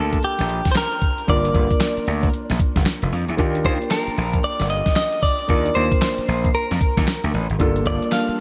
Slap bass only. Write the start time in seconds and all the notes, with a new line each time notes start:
Already playing: D2
0.24 muted slap bass stroke
0.40 A#1
1.29 G1
1.55 G1
1.98 muted slap bass stroke
2.08 D2
2.50 A#1
2.76 G1
3.02 F1
3.12 F2
3.29 E2
3.39 D#2
3.65 D#2
4.08 muted slap bass stroke
4.18 A#1
4.44 muted slap bass stroke
4.61 G1
5.49 D#2
5.76 D#2
6.19 muted slap bass stroke
6.28 A#1
6.71 F2
6.97 D#2
7.24 D2
7.34 A1
7.50 G#1
7.60 G1
7.86 G1
8.29 muted slap bass stroke